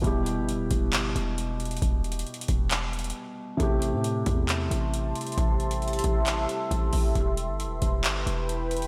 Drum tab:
HH |x-----------x-----------x-----------x-----------x-----------x-----------x-----------x--x--x--x--|x-----------x---x---x---x---x---x---x-----------x-----------x--x--x--x--------------------------|x-----------x-----------x-----------x-----------x-----------x-----------x-----------x--x--x--x--|x-----------x-----x-----x--x--x--x--x-----------x-----------x-----------x-----------o-----------|
CP |------------------------------------------------x-----------------------------------------------|------------------------------------------------x-----------------------------------------------|------------------------------------------------x-----------------------------------------------|------------------------------------------------x-----------------------------------------------|
BD |o-----------------------------------o-----------------------------------------------------------|o-----------------------------------o-----------------------------------------------------------|o-----------------------------------o-----------------------------------------------------------|o-----------------------------------o-----------------------------------o-----------o-----------|

HH |x-----------x-----------x-----------x-----------x-----------x-----------x-----------x--x--x-----|
CP |------------------------------------------------x-----------------------------------------------|
BD |o-----------------------------------o-----------------------------------------------------------|